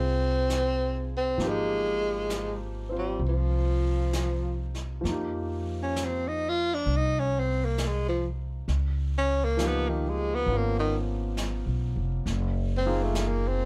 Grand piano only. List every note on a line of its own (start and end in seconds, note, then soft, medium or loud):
0.00 1.36 F3 soft
0.00 1.38 A#3 soft
0.00 1.38 C4 soft
0.00 1.39 D#4 soft
0.00 1.39 F4 soft
0.00 1.39 G4 medium
0.00 1.40 G#4 soft
1.38 4.99 F3 soft
1.38 5.03 A#3 soft
1.38 5.05 D#4 soft
1.43 5.06 G4 soft
2.89 5.04 C4 soft
2.89 5.05 F4 soft
2.89 5.06 C5 soft
5.01 8.66 F3 soft
5.01 8.68 A#3 soft
5.09 8.70 D#4 soft
5.09 8.72 G4 soft
9.57 12.26 F3 soft
9.57 12.27 A#3 soft
9.57 12.27 D#4 soft
9.62 12.28 G4 medium
10.48 12.26 B3 soft
10.48 12.27 C#4 soft
10.48 12.28 F4 soft
12.86 13.65 A#3 soft
12.86 13.65 D#4 soft
12.86 13.65 F4 soft
12.86 13.65 G#4 medium